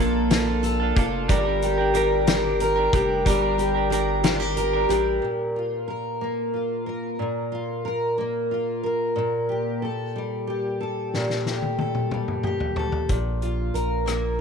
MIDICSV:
0, 0, Header, 1, 5, 480
1, 0, Start_track
1, 0, Tempo, 655738
1, 945, Time_signature, 6, 3, 24, 8
1, 10547, End_track
2, 0, Start_track
2, 0, Title_t, "Steel-string acoustic guitar"
2, 0, Program_c, 0, 25
2, 0, Note_on_c, 0, 58, 77
2, 0, Note_on_c, 0, 65, 59
2, 0, Note_on_c, 0, 69, 69
2, 214, Note_off_c, 0, 65, 0
2, 223, Note_on_c, 0, 65, 54
2, 452, Note_off_c, 0, 69, 0
2, 461, Note_on_c, 0, 69, 70
2, 695, Note_off_c, 0, 65, 0
2, 703, Note_on_c, 0, 65, 58
2, 941, Note_off_c, 0, 58, 0
2, 943, Note_off_c, 0, 69, 0
2, 944, Note_on_c, 0, 55, 75
2, 950, Note_on_c, 0, 70, 60
2, 992, Note_off_c, 0, 65, 0
2, 1196, Note_on_c, 0, 67, 60
2, 1417, Note_off_c, 0, 70, 0
2, 1420, Note_on_c, 0, 70, 69
2, 1656, Note_off_c, 0, 67, 0
2, 1665, Note_on_c, 0, 67, 55
2, 1908, Note_off_c, 0, 70, 0
2, 1911, Note_on_c, 0, 70, 69
2, 2141, Note_off_c, 0, 67, 0
2, 2150, Note_on_c, 0, 67, 59
2, 2383, Note_off_c, 0, 55, 0
2, 2393, Note_off_c, 0, 70, 0
2, 2394, Note_on_c, 0, 55, 81
2, 2396, Note_on_c, 0, 70, 59
2, 2613, Note_off_c, 0, 67, 0
2, 2622, Note_on_c, 0, 67, 59
2, 2853, Note_off_c, 0, 70, 0
2, 2856, Note_on_c, 0, 70, 59
2, 3097, Note_off_c, 0, 67, 0
2, 3100, Note_on_c, 0, 65, 52
2, 3218, Note_off_c, 0, 65, 0
2, 3218, Note_on_c, 0, 67, 51
2, 3342, Note_off_c, 0, 70, 0
2, 3345, Note_on_c, 0, 70, 60
2, 3570, Note_off_c, 0, 67, 0
2, 3579, Note_on_c, 0, 67, 59
2, 3821, Note_on_c, 0, 46, 47
2, 3828, Note_off_c, 0, 55, 0
2, 3869, Note_off_c, 0, 67, 0
2, 4071, Note_on_c, 0, 65, 35
2, 4300, Note_off_c, 0, 70, 0
2, 4303, Note_on_c, 0, 70, 43
2, 4547, Note_on_c, 0, 58, 37
2, 4776, Note_off_c, 0, 65, 0
2, 4785, Note_on_c, 0, 65, 34
2, 5020, Note_off_c, 0, 70, 0
2, 5023, Note_on_c, 0, 70, 38
2, 5255, Note_off_c, 0, 46, 0
2, 5264, Note_on_c, 0, 46, 47
2, 5495, Note_off_c, 0, 65, 0
2, 5504, Note_on_c, 0, 65, 36
2, 5742, Note_off_c, 0, 70, 0
2, 5745, Note_on_c, 0, 70, 46
2, 5984, Note_off_c, 0, 58, 0
2, 5987, Note_on_c, 0, 58, 41
2, 6222, Note_off_c, 0, 65, 0
2, 6231, Note_on_c, 0, 65, 38
2, 6464, Note_off_c, 0, 70, 0
2, 6467, Note_on_c, 0, 70, 41
2, 6694, Note_off_c, 0, 46, 0
2, 6703, Note_on_c, 0, 46, 50
2, 6755, Note_off_c, 0, 65, 0
2, 6946, Note_on_c, 0, 67, 38
2, 7186, Note_off_c, 0, 70, 0
2, 7189, Note_on_c, 0, 69, 39
2, 7211, Note_off_c, 0, 58, 0
2, 7434, Note_on_c, 0, 55, 41
2, 7658, Note_off_c, 0, 67, 0
2, 7667, Note_on_c, 0, 67, 36
2, 7901, Note_off_c, 0, 69, 0
2, 7910, Note_on_c, 0, 69, 38
2, 8144, Note_off_c, 0, 46, 0
2, 8158, Note_on_c, 0, 46, 49
2, 8386, Note_off_c, 0, 67, 0
2, 8393, Note_on_c, 0, 67, 36
2, 8617, Note_off_c, 0, 69, 0
2, 8626, Note_on_c, 0, 69, 42
2, 8857, Note_off_c, 0, 55, 0
2, 8865, Note_on_c, 0, 55, 38
2, 9100, Note_off_c, 0, 67, 0
2, 9109, Note_on_c, 0, 67, 39
2, 9336, Note_off_c, 0, 69, 0
2, 9345, Note_on_c, 0, 69, 41
2, 9580, Note_off_c, 0, 46, 0
2, 9589, Note_on_c, 0, 46, 51
2, 9633, Note_off_c, 0, 55, 0
2, 9633, Note_off_c, 0, 69, 0
2, 9635, Note_off_c, 0, 67, 0
2, 9827, Note_on_c, 0, 65, 37
2, 10059, Note_on_c, 0, 70, 44
2, 10292, Note_on_c, 0, 58, 42
2, 10530, Note_off_c, 0, 65, 0
2, 10547, Note_off_c, 0, 46, 0
2, 10547, Note_off_c, 0, 58, 0
2, 10547, Note_off_c, 0, 70, 0
2, 10547, End_track
3, 0, Start_track
3, 0, Title_t, "Clean electric guitar"
3, 0, Program_c, 1, 27
3, 0, Note_on_c, 1, 58, 66
3, 0, Note_on_c, 1, 62, 61
3, 0, Note_on_c, 1, 65, 69
3, 4, Note_on_c, 1, 69, 71
3, 215, Note_off_c, 1, 58, 0
3, 220, Note_off_c, 1, 62, 0
3, 224, Note_on_c, 1, 58, 86
3, 226, Note_off_c, 1, 65, 0
3, 229, Note_on_c, 1, 62, 81
3, 230, Note_off_c, 1, 69, 0
3, 235, Note_on_c, 1, 65, 88
3, 239, Note_on_c, 1, 69, 93
3, 338, Note_off_c, 1, 69, 0
3, 345, Note_off_c, 1, 58, 0
3, 347, Note_off_c, 1, 62, 0
3, 347, Note_on_c, 1, 69, 59
3, 350, Note_off_c, 1, 65, 0
3, 360, Note_on_c, 1, 65, 48
3, 369, Note_on_c, 1, 62, 44
3, 575, Note_off_c, 1, 69, 0
3, 584, Note_on_c, 1, 69, 56
3, 588, Note_off_c, 1, 65, 0
3, 597, Note_off_c, 1, 62, 0
3, 597, Note_on_c, 1, 65, 51
3, 607, Note_on_c, 1, 62, 48
3, 701, Note_off_c, 1, 62, 0
3, 702, Note_on_c, 1, 58, 68
3, 705, Note_off_c, 1, 69, 0
3, 710, Note_on_c, 1, 62, 66
3, 711, Note_off_c, 1, 65, 0
3, 721, Note_on_c, 1, 65, 68
3, 726, Note_on_c, 1, 69, 81
3, 936, Note_off_c, 1, 62, 0
3, 937, Note_off_c, 1, 58, 0
3, 940, Note_on_c, 1, 55, 81
3, 945, Note_on_c, 1, 62, 77
3, 947, Note_off_c, 1, 65, 0
3, 950, Note_on_c, 1, 67, 87
3, 952, Note_off_c, 1, 69, 0
3, 954, Note_on_c, 1, 70, 88
3, 1052, Note_off_c, 1, 70, 0
3, 1061, Note_on_c, 1, 70, 65
3, 1062, Note_off_c, 1, 55, 0
3, 1065, Note_off_c, 1, 62, 0
3, 1067, Note_off_c, 1, 67, 0
3, 1076, Note_on_c, 1, 67, 55
3, 1084, Note_on_c, 1, 62, 49
3, 1292, Note_off_c, 1, 70, 0
3, 1301, Note_on_c, 1, 70, 58
3, 1303, Note_off_c, 1, 67, 0
3, 1312, Note_on_c, 1, 67, 56
3, 1314, Note_off_c, 1, 62, 0
3, 1323, Note_on_c, 1, 62, 47
3, 1418, Note_off_c, 1, 62, 0
3, 1418, Note_on_c, 1, 55, 61
3, 1422, Note_off_c, 1, 70, 0
3, 1427, Note_on_c, 1, 62, 66
3, 1428, Note_off_c, 1, 67, 0
3, 1436, Note_on_c, 1, 67, 77
3, 1439, Note_on_c, 1, 70, 69
3, 1657, Note_off_c, 1, 55, 0
3, 1662, Note_off_c, 1, 62, 0
3, 1666, Note_off_c, 1, 67, 0
3, 1666, Note_on_c, 1, 55, 84
3, 1671, Note_on_c, 1, 62, 92
3, 1672, Note_off_c, 1, 70, 0
3, 1675, Note_on_c, 1, 67, 98
3, 1680, Note_on_c, 1, 70, 94
3, 1770, Note_off_c, 1, 70, 0
3, 1779, Note_on_c, 1, 70, 59
3, 1785, Note_off_c, 1, 55, 0
3, 1786, Note_off_c, 1, 67, 0
3, 1787, Note_off_c, 1, 62, 0
3, 1794, Note_on_c, 1, 67, 54
3, 1801, Note_on_c, 1, 62, 46
3, 2009, Note_off_c, 1, 70, 0
3, 2018, Note_on_c, 1, 70, 62
3, 2021, Note_off_c, 1, 67, 0
3, 2030, Note_on_c, 1, 67, 56
3, 2032, Note_off_c, 1, 62, 0
3, 2042, Note_on_c, 1, 62, 56
3, 2141, Note_off_c, 1, 62, 0
3, 2141, Note_off_c, 1, 70, 0
3, 2142, Note_on_c, 1, 55, 65
3, 2147, Note_off_c, 1, 67, 0
3, 2149, Note_on_c, 1, 62, 68
3, 2160, Note_on_c, 1, 67, 71
3, 2164, Note_on_c, 1, 70, 72
3, 2371, Note_off_c, 1, 55, 0
3, 2377, Note_off_c, 1, 62, 0
3, 2380, Note_on_c, 1, 55, 81
3, 2381, Note_off_c, 1, 67, 0
3, 2386, Note_off_c, 1, 70, 0
3, 2386, Note_on_c, 1, 62, 79
3, 2390, Note_on_c, 1, 67, 97
3, 2395, Note_on_c, 1, 70, 87
3, 2493, Note_off_c, 1, 70, 0
3, 2501, Note_off_c, 1, 55, 0
3, 2502, Note_on_c, 1, 70, 59
3, 2504, Note_off_c, 1, 62, 0
3, 2505, Note_off_c, 1, 67, 0
3, 2513, Note_on_c, 1, 67, 59
3, 2525, Note_on_c, 1, 62, 50
3, 2732, Note_off_c, 1, 70, 0
3, 2740, Note_on_c, 1, 70, 54
3, 2744, Note_off_c, 1, 67, 0
3, 2752, Note_on_c, 1, 67, 55
3, 2754, Note_off_c, 1, 62, 0
3, 2762, Note_on_c, 1, 62, 43
3, 2862, Note_off_c, 1, 62, 0
3, 2862, Note_off_c, 1, 70, 0
3, 2862, Note_on_c, 1, 55, 69
3, 2868, Note_off_c, 1, 67, 0
3, 2871, Note_on_c, 1, 62, 61
3, 2877, Note_on_c, 1, 67, 66
3, 2883, Note_on_c, 1, 70, 70
3, 3094, Note_off_c, 1, 55, 0
3, 3100, Note_off_c, 1, 62, 0
3, 3103, Note_off_c, 1, 67, 0
3, 3103, Note_on_c, 1, 55, 78
3, 3107, Note_off_c, 1, 70, 0
3, 3109, Note_on_c, 1, 62, 84
3, 3111, Note_on_c, 1, 67, 96
3, 3116, Note_on_c, 1, 70, 81
3, 3216, Note_off_c, 1, 70, 0
3, 3223, Note_off_c, 1, 55, 0
3, 3224, Note_on_c, 1, 70, 63
3, 3226, Note_off_c, 1, 62, 0
3, 3227, Note_off_c, 1, 67, 0
3, 3238, Note_on_c, 1, 67, 51
3, 3247, Note_on_c, 1, 62, 46
3, 3457, Note_off_c, 1, 70, 0
3, 3466, Note_on_c, 1, 70, 62
3, 3470, Note_off_c, 1, 67, 0
3, 3475, Note_off_c, 1, 62, 0
3, 3481, Note_on_c, 1, 67, 57
3, 3488, Note_on_c, 1, 62, 44
3, 3584, Note_off_c, 1, 70, 0
3, 3588, Note_off_c, 1, 62, 0
3, 3589, Note_on_c, 1, 55, 60
3, 3591, Note_off_c, 1, 67, 0
3, 3597, Note_on_c, 1, 62, 67
3, 3606, Note_on_c, 1, 67, 68
3, 3611, Note_on_c, 1, 70, 69
3, 3825, Note_off_c, 1, 55, 0
3, 3830, Note_off_c, 1, 62, 0
3, 3834, Note_off_c, 1, 67, 0
3, 3837, Note_off_c, 1, 70, 0
3, 10547, End_track
4, 0, Start_track
4, 0, Title_t, "Analog synth bass"
4, 0, Program_c, 2, 38
4, 0, Note_on_c, 2, 34, 113
4, 675, Note_off_c, 2, 34, 0
4, 704, Note_on_c, 2, 29, 92
4, 930, Note_off_c, 2, 29, 0
4, 944, Note_on_c, 2, 31, 111
4, 2114, Note_off_c, 2, 31, 0
4, 2147, Note_on_c, 2, 29, 87
4, 2371, Note_off_c, 2, 29, 0
4, 2386, Note_on_c, 2, 31, 101
4, 3554, Note_off_c, 2, 31, 0
4, 3581, Note_on_c, 2, 33, 76
4, 3807, Note_off_c, 2, 33, 0
4, 9585, Note_on_c, 2, 34, 93
4, 10036, Note_off_c, 2, 34, 0
4, 10061, Note_on_c, 2, 34, 76
4, 10547, Note_off_c, 2, 34, 0
4, 10547, End_track
5, 0, Start_track
5, 0, Title_t, "Drums"
5, 224, Note_on_c, 9, 42, 82
5, 229, Note_on_c, 9, 38, 105
5, 297, Note_off_c, 9, 42, 0
5, 302, Note_off_c, 9, 38, 0
5, 466, Note_on_c, 9, 42, 50
5, 539, Note_off_c, 9, 42, 0
5, 707, Note_on_c, 9, 36, 100
5, 714, Note_on_c, 9, 42, 70
5, 780, Note_off_c, 9, 36, 0
5, 787, Note_off_c, 9, 42, 0
5, 946, Note_on_c, 9, 36, 94
5, 948, Note_on_c, 9, 42, 88
5, 1020, Note_off_c, 9, 36, 0
5, 1022, Note_off_c, 9, 42, 0
5, 1188, Note_on_c, 9, 42, 51
5, 1261, Note_off_c, 9, 42, 0
5, 1424, Note_on_c, 9, 42, 64
5, 1497, Note_off_c, 9, 42, 0
5, 1663, Note_on_c, 9, 42, 94
5, 1668, Note_on_c, 9, 38, 106
5, 1736, Note_off_c, 9, 42, 0
5, 1741, Note_off_c, 9, 38, 0
5, 1904, Note_on_c, 9, 42, 54
5, 1977, Note_off_c, 9, 42, 0
5, 2146, Note_on_c, 9, 36, 93
5, 2152, Note_on_c, 9, 42, 71
5, 2219, Note_off_c, 9, 36, 0
5, 2225, Note_off_c, 9, 42, 0
5, 2386, Note_on_c, 9, 36, 87
5, 2389, Note_on_c, 9, 42, 90
5, 2459, Note_off_c, 9, 36, 0
5, 2462, Note_off_c, 9, 42, 0
5, 2627, Note_on_c, 9, 42, 49
5, 2700, Note_off_c, 9, 42, 0
5, 2870, Note_on_c, 9, 42, 61
5, 2943, Note_off_c, 9, 42, 0
5, 3102, Note_on_c, 9, 42, 79
5, 3107, Note_on_c, 9, 38, 105
5, 3175, Note_off_c, 9, 42, 0
5, 3180, Note_off_c, 9, 38, 0
5, 3344, Note_on_c, 9, 42, 52
5, 3417, Note_off_c, 9, 42, 0
5, 3588, Note_on_c, 9, 42, 72
5, 3661, Note_off_c, 9, 42, 0
5, 8153, Note_on_c, 9, 38, 37
5, 8226, Note_off_c, 9, 38, 0
5, 8271, Note_on_c, 9, 38, 30
5, 8344, Note_off_c, 9, 38, 0
5, 8388, Note_on_c, 9, 38, 39
5, 8462, Note_off_c, 9, 38, 0
5, 8508, Note_on_c, 9, 48, 36
5, 8581, Note_off_c, 9, 48, 0
5, 8627, Note_on_c, 9, 48, 47
5, 8700, Note_off_c, 9, 48, 0
5, 8746, Note_on_c, 9, 47, 41
5, 8819, Note_off_c, 9, 47, 0
5, 8868, Note_on_c, 9, 47, 52
5, 8941, Note_off_c, 9, 47, 0
5, 8989, Note_on_c, 9, 45, 46
5, 9062, Note_off_c, 9, 45, 0
5, 9102, Note_on_c, 9, 45, 60
5, 9175, Note_off_c, 9, 45, 0
5, 9226, Note_on_c, 9, 43, 51
5, 9299, Note_off_c, 9, 43, 0
5, 9341, Note_on_c, 9, 43, 61
5, 9415, Note_off_c, 9, 43, 0
5, 9460, Note_on_c, 9, 43, 49
5, 9533, Note_off_c, 9, 43, 0
5, 9582, Note_on_c, 9, 42, 57
5, 9585, Note_on_c, 9, 36, 58
5, 9655, Note_off_c, 9, 42, 0
5, 9658, Note_off_c, 9, 36, 0
5, 9823, Note_on_c, 9, 42, 31
5, 9897, Note_off_c, 9, 42, 0
5, 10066, Note_on_c, 9, 42, 41
5, 10139, Note_off_c, 9, 42, 0
5, 10301, Note_on_c, 9, 42, 57
5, 10306, Note_on_c, 9, 37, 71
5, 10374, Note_off_c, 9, 42, 0
5, 10379, Note_off_c, 9, 37, 0
5, 10547, End_track
0, 0, End_of_file